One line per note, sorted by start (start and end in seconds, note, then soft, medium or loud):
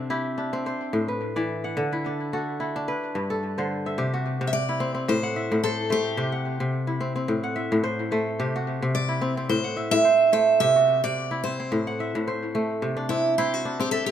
0.00 0.71 C3 medium
0.00 0.53 C4 soft
0.00 0.37 D4 soft
0.00 0.20 A4 medium
0.00 0.34 C5 medium
0.00 0.47 E5 medium
0.10 1.67 E4 medium
0.10 1.52 G4 medium
0.38 2.06 D4 medium
0.53 1.14 C4 medium
0.66 1.14 C5 medium
0.93 1.81 A2 medium
1.08 2.31 B4 medium
1.36 1.81 E3 medium
1.36 2.47 D5 medium
1.64 2.61 F#5 medium
1.77 2.92 D3 medium
1.93 2.60 E4 medium
2.06 2.75 D4 soft
2.33 3.21 F#4 medium
2.33 3.30 A4 medium
2.60 4.17 E4 medium
2.76 4.44 D4 medium
2.88 3.64 B4 medium
3.15 4.02 G2 medium
3.30 4.62 A4 medium
3.58 4.02 D3 medium
3.58 4.77 C5 medium
3.86 4.90 E5 medium
3.98 4.40 C3 medium
3.98 5.29 G4 medium
4.14 5.60 F#4 medium
4.41 5.13 C3 medium
4.47 4.52 E5 medium
4.53 5.08 D5 medium
4.69 6.26 E4 medium
4.80 4.94 C4 medium
4.95 6.75 C4 medium
5.08 5.50 A2 medium
5.08 5.60 C5 medium
5.23 6.23 F#5 medium
5.36 6.40 E5 medium
5.52 6.23 A2 medium
5.63 5.92 A4 medium
5.63 5.90 C5 medium
5.90 7.90 A3 medium
5.90 6.70 G4 medium
5.90 7.09 C5 medium
6.17 6.59 C3 medium
6.17 7.50 G4 medium
6.32 7.29 F#5 medium
6.60 7.34 C3 medium
6.87 8.44 E4 medium
7.01 7.15 C4 medium
7.16 8.96 C4 medium
7.28 7.71 A2 medium
7.44 8.46 F#5 medium
7.56 8.59 E5 medium
7.72 8.44 A2 medium
7.83 8.12 C5 medium
8.12 10.11 A3 medium
8.12 9.31 C5 medium
8.40 8.81 C3 medium
8.40 9.70 G4 medium
8.56 10.02 F#4 medium
8.82 9.55 C3 medium
8.95 9.49 D5 medium
9.09 10.65 E4 medium
9.21 9.37 C4 medium
9.37 11.17 C4 medium
9.49 9.91 A2 medium
9.49 9.89 C5 medium
9.64 10.60 F#5 medium
9.77 10.80 E5 medium
9.91 10.65 A2 medium
9.91 10.32 E5 loud
10.05 10.33 C5 medium
10.33 12.32 A3 medium
10.33 11.52 C5 medium
10.33 10.59 E5 medium
10.60 11.03 C3 medium
10.60 11.93 G4 medium
10.60 11.03 E5 loud
10.76 12.22 F#4 medium
11.04 11.75 C3 medium
11.04 11.41 D5 medium
11.31 12.88 E4 medium
11.44 11.59 C4 medium
11.44 12.49 C5 medium
11.60 13.09 C4 medium
11.72 12.14 A2 medium
11.87 12.84 F#5 medium
12.00 13.04 E5 medium
12.15 12.86 A2 medium
12.27 13.38 C5 medium
12.55 14.11 A3 medium
12.82 13.96 C3 medium
12.97 13.65 D4 medium
13.09 13.79 C4 medium
13.09 13.34 E4 medium
13.38 14.11 E4 medium
13.38 13.54 G4 medium
13.38 14.11 C5 medium
13.54 13.80 F#4 medium
13.65 14.11 D4 medium
13.80 14.11 C4 medium
13.80 13.91 G4 medium
13.91 14.05 A4 loud
13.91 14.11 E5 medium
14.06 14.11 A4 medium